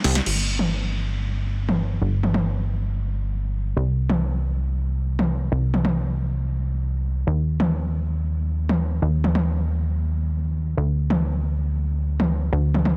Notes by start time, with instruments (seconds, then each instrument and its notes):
0.04 analog synth bass C2, snare, open hi-hat
0.15 snare, closed hi-hat
0.26 analog synth bass G1, crash
0.59 mid tom
1.69 mid tom
2.01 analog synth bass G1
2.23 mid tom
2.34 mid tom
3.77 analog synth bass C2
4.10 mid tom
5.19 mid tom
5.52 analog synth bass C2
5.74 mid tom
5.85 mid tom
7.27 analog synth bass D#2
7.60 mid tom
8.69 mid tom
9.02 analog synth bass D#2
9.24 mid tom
9.35 mid tom
10.77 analog synth bass D2
11.10 mid tom
12.20 mid tom
12.52 analog synth bass D2
12.74 mid tom
12.85 mid tom